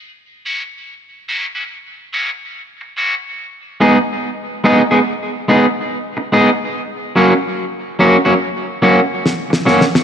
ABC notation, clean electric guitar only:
X:1
M:4/4
L:1/16
Q:"Swing 16ths" 1/4=72
K:F#mix
V:1 name="Clean electric guitar"
z2 [F,A,CF] z3 [F,A,CF] [F,A,CF] z2 [F,A,CF] z3 [F,A,CF] z | z2 [G,B,DG] z3 [G,B,DG] [G,B,DG] z2 [G,B,DG] z3 [G,B,DG] z | z2 [F,A,CF] z3 [F,A,CF] [F,A,CF] z2 [F,A,CF] z3 [F,A,CF] z |]